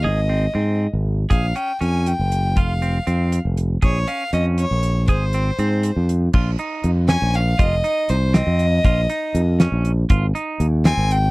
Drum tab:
CC |-----|-----|-----|-----|
HH |-----|xxxxx|xxxxx|xxxxx|
SD |-----|-----|-----|-----|
BD |-----|o----|o----|o----|

CC |-----|x----|-----|-----|
HH |xxxxx|-xxxx|xxxxx|xxxxx|
SD |-----|---o-|---o-|---o-|
BD |o----|o----|o----|o----|

CC |-----|
HH |xxxxx|
SD |---o-|
BD |o----|